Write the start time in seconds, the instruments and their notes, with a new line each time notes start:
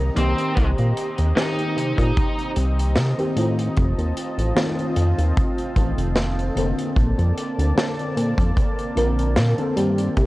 Already playing: analog synth bass C2, fm electric piano D#3 A#3 C4 A#4, analog synth pad C4 G4 D#5 A#5
0.15 analog synth bass C2, fm electric piano D#3 A#3 C4 G4, lead electric guitar C4, closed hi-hat
0.38 closed hi-hat
0.57 analog synth bass C2, kick, closed hi-hat
0.78 analog synth bass A#2, closed hi-hat
0.97 closed hi-hat
1.18 analog synth bass D#2, closed hi-hat
1.35 fm electric piano D#3 A#3 C4 G4, lead electric guitar D#4, snare, closed hi-hat
1.59 closed hi-hat
1.77 analog synth bass C3, closed hi-hat
1.98 analog synth bass A#2, kick, closed hi-hat
2.17 kick, closed hi-hat
2.39 closed hi-hat
2.56 analog synth bass C2, closed hi-hat
2.79 closed hi-hat
2.96 analog synth bass C3, snare, closed hi-hat
3.17 fm electric piano D#3 A#3 C4 G4, closed hi-hat
3.34 analog synth bass A2, fm electric piano D#3 A3 C4 F4, closed hi-hat
3.59 closed hi-hat
3.76 analog synth bass F1, analog synth pad F4 A5, kick, closed hi-hat
3.98 analog synth bass D#2, closed hi-hat
4.17 closed hi-hat
4.38 analog synth bass A1, closed hi-hat
4.55 fm electric piano D#3 A3 C4 F4, snare, closed hi-hat
4.79 closed hi-hat
4.96 analog synth bass F2, closed hi-hat
5.18 analog synth bass D#2, closed hi-hat
5.37 kick, closed hi-hat
5.58 closed hi-hat
5.76 analog synth bass A1, fm electric piano D#3 A3 C4 A4, kick, closed hi-hat
5.98 analog synth bass F1, closed hi-hat
6.16 snare, closed hi-hat
6.39 closed hi-hat
6.55 analog synth bass F1, fm electric piano D3 A#3 C4 A4, closed hi-hat
6.79 closed hi-hat
6.97 analog synth bass A#1, analog synth pad A#3 D5, kick, closed hi-hat
7.19 analog synth bass F2, closed hi-hat
7.38 closed hi-hat
7.59 analog synth bass D2, closed hi-hat
7.75 fm electric piano D3 A#3 C4 A4, snare, closed hi-hat
7.99 closed hi-hat
8.17 analog synth bass A#2, closed hi-hat
8.38 analog synth bass F2, kick, closed hi-hat
8.57 kick, closed hi-hat
8.79 closed hi-hat
8.95 analog synth bass A#1, fm electric piano D3 A#3 C4 A#4, closed hi-hat
9.19 closed hi-hat
9.36 analog synth bass A#2, snare, closed hi-hat
9.57 fm electric piano D3 A#3 C4 A4, closed hi-hat
9.76 analog synth bass G2, fm electric piano D#3 A#3 C4 G4, closed hi-hat
9.98 closed hi-hat
10.16 analog synth bass C2, analog synth pad C4 G4 D#5 A#5, kick, closed hi-hat